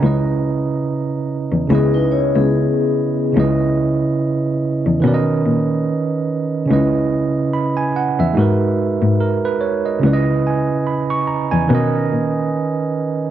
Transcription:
0.00 0.65 C#2 loud
0.00 1.64 C#3 medium
0.00 1.65 C#4 medium
0.00 1.66 E4 medium
0.00 0.25 A#5 medium
0.04 1.67 B4 medium
0.04 1.68 D#5 medium
1.52 1.69 E2 medium
1.67 2.32 C#2 loud
1.67 3.31 C#3 medium
1.67 1.93 B3 medium
1.67 3.33 C#4 medium
1.67 3.34 E4 medium
1.67 1.93 G#4 medium
1.73 3.35 B4 medium
1.73 3.36 D#5 medium
1.94 2.11 D#4 medium
1.94 2.11 B4 medium
2.11 2.34 E4 medium
2.11 2.34 C#5 medium
2.35 2.53 C#2 medium
2.35 3.33 B3 medium
2.35 3.33 G#4 medium
3.33 4.98 C#3 medium
3.33 4.99 C#4 medium
3.33 5.00 E4 medium
3.37 3.99 C#2 loud
3.37 5.01 B4 medium
3.37 5.02 D#5 medium
4.86 5.03 E2 medium
5.00 5.43 B2 loud
5.00 6.65 D#3 medium
5.00 6.66 C#4 medium
5.00 6.66 B4 medium
5.06 6.68 A#4 medium
5.06 5.13 D5 medium
5.14 6.72 D#5 medium
5.46 5.85 A#2 medium
6.66 8.31 C#3 medium
6.66 8.32 C#4 medium
6.66 6.77 D#4 soft
6.71 7.32 C#2 medium
6.71 8.34 B4 medium
6.71 7.53 D#5 medium
6.76 8.36 E4 medium
7.53 7.76 B5 medium
7.77 7.94 G#5 medium
7.96 8.18 F#5 medium
8.19 8.37 E2 medium
8.19 8.59 E5 medium
8.33 9.98 G#3 medium
8.33 9.99 D#4 medium
8.33 10.00 F#4 medium
8.37 8.99 G#2 loud
8.37 9.19 A#4 medium
8.37 9.20 B4 medium
9.02 9.19 G#2 medium
9.21 9.43 A#4 medium
9.45 9.61 B4 medium
9.61 9.84 C#5 medium
9.86 10.12 D#5 medium
9.99 11.65 C#3 medium
9.99 11.66 C#4 medium
9.99 11.67 E4 medium
10.03 10.65 C#2 loud
10.03 11.68 B4 medium
10.03 10.13 D5 medium
10.13 11.72 D#5 medium
10.47 10.86 G#5 medium
10.87 11.09 B5 medium
11.10 11.28 C#6 medium
11.28 11.51 A#5 medium
11.52 11.69 E2 medium
11.52 11.91 G#5 medium
11.67 12.10 B2 loud
11.67 13.30 D#3 medium
11.67 13.30 C#4 medium
11.67 13.30 B4 medium
11.73 13.30 A#4 medium
11.73 13.30 D#5 medium
12.12 12.51 A#2 medium

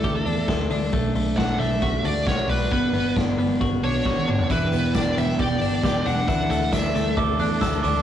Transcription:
0.00 0.22 D2 loud
0.00 0.93 E3 medium
0.00 0.92 A3 medium
0.00 0.25 D4 medium
0.00 0.45 A4 medium
0.00 kick loud
0.00 closed hi-hat medium
0.04 0.15 G4 medium
0.15 0.47 A4 medium
0.26 0.45 E2 medium
0.26 0.70 D4 medium
0.26 open hi-hat medium
0.48 0.67 D2 loud
0.48 0.98 A4 medium
0.48 kick loud
0.48 snare loud
0.48 closed hi-hat medium
0.70 0.89 D2 loud
0.70 1.38 D4 medium
0.70 open hi-hat medium
0.93 1.12 B1 medium
0.93 1.14 A3 medium
0.93 kick loud
0.93 closed hi-hat medium
1.15 1.34 B1 medium
1.15 1.58 A3 medium
1.15 open hi-hat medium
1.37 1.56 B1 medium
1.37 2.04 D4 medium
1.37 1.59 F#5 loud
1.37 kick loud
1.37 snare loud
1.37 closed hi-hat medium
1.59 1.78 B1 medium
1.59 2.71 A3 medium
1.59 2.06 E5 loud
1.59 open hi-hat medium
1.82 2.01 B1 loud
1.82 2.26 F#4 medium
1.82 kick loud
1.82 closed hi-hat medium
2.04 2.27 D2 medium
2.04 2.48 D4 medium
2.04 2.27 D5 medium
2.04 open hi-hat medium
2.26 2.45 B1 loud
2.26 2.76 F#4 medium
2.26 2.50 C#5 medium
2.26 kick loud
2.26 snare loud
2.26 closed hi-hat medium
2.48 2.71 B1 loud
2.48 3.16 D4 medium
2.48 2.71 B4 medium
2.48 open hi-hat medium
2.71 2.90 G1 loud
2.71 2.93 B3 medium
2.71 3.14 B4 medium
2.71 kick loud
2.71 closed hi-hat medium
2.93 3.12 G1 loud
2.93 3.38 B3 medium
2.93 open hi-hat medium
3.16 3.35 G1 medium
3.16 3.83 D4 medium
3.16 kick loud
3.16 snare loud
3.16 closed hi-hat medium
3.38 3.56 G1 medium
3.38 4.54 B3 medium
3.38 open hi-hat medium
3.61 3.79 G1 loud
3.61 4.05 F#4 medium
3.61 kick loud
3.61 closed hi-hat medium
3.83 4.06 B1 medium
3.83 4.28 D4 medium
3.83 4.51 C#5 medium
3.83 open hi-hat medium
4.05 4.24 G1 loud
4.05 4.55 F#4 medium
4.05 kick loud
4.05 snare medium
4.17 high tom medium
4.28 4.46 G1 loud
4.28 4.94 D4 medium
4.28 mid tom loud
4.39 floor tom medium
4.50 4.68 E1 loud
4.50 8.02 E3 medium
4.50 6.27 E3 medium
4.50 6.27 B3 medium
4.50 8.02 D4 medium
4.50 6.26 G4 medium
4.50 4.95 B4 loud
4.50 kick loud
4.50 closed hi-hat medium
4.50 tambourine medium
4.72 4.91 E1 loud
4.72 5.16 B3 medium
4.72 open hi-hat medium
4.72 tambourine medium
4.94 5.13 E1 loud
4.94 5.61 D4 medium
4.94 5.18 D5 medium
4.94 kick loud
4.94 snare loud
4.94 closed hi-hat medium
4.94 tambourine medium
5.17 5.35 E1 medium
5.17 6.33 B3 medium
5.17 5.41 E5 medium
5.17 open hi-hat medium
5.17 tambourine medium
5.39 5.58 E1 loud
5.39 5.83 G4 medium
5.39 6.09 D5 loud
5.39 kick loud
5.39 closed hi-hat medium
5.39 tambourine soft
5.61 5.80 G1 medium
5.61 6.05 D4 medium
5.61 open hi-hat medium
5.61 tambourine soft
5.83 6.02 E1 loud
5.83 6.33 G4 medium
5.83 kick loud
5.83 snare loud
5.83 closed hi-hat medium
5.83 tambourine medium
6.05 6.24 E1 loud
6.05 6.72 D4 medium
6.05 6.27 F#5 loud
6.05 open hi-hat medium
6.05 tambourine medium
6.28 6.47 D2 loud
6.28 8.02 E3 medium
6.28 8.02 A3 medium
6.28 8.02 A4 medium
6.28 6.50 F#5 loud
6.28 kick loud
6.28 closed hi-hat medium
6.28 tambourine medium
6.50 6.69 D2 loud
6.50 6.95 A3 medium
6.50 6.73 F#5 medium
6.50 open hi-hat medium
6.50 tambourine medium
6.72 6.91 D2 loud
6.72 7.39 D4 medium
6.72 7.14 E5 medium
6.72 kick loud
6.72 snare loud
6.72 closed hi-hat medium
6.72 tambourine medium
6.95 7.14 D2 medium
6.95 8.02 A3 medium
6.95 open hi-hat medium
6.95 tambourine medium
7.17 7.36 D2 loud
7.17 7.62 A4 medium
7.17 7.40 D6 medium
7.17 kick loud
7.17 closed hi-hat loud
7.39 7.58 E2 medium
7.39 7.84 D4 medium
7.39 7.63 F#6 medium
7.39 open hi-hat medium
7.39 tambourine soft
7.61 7.80 D2 loud
7.61 8.02 A4 medium
7.61 7.84 E6 loud
7.61 kick loud
7.61 snare loud
7.61 closed hi-hat medium
7.61 tambourine medium
7.83 8.02 D2 loud
7.83 8.02 D4 medium
7.83 8.02 D6 loud
7.83 open hi-hat medium
7.83 tambourine medium

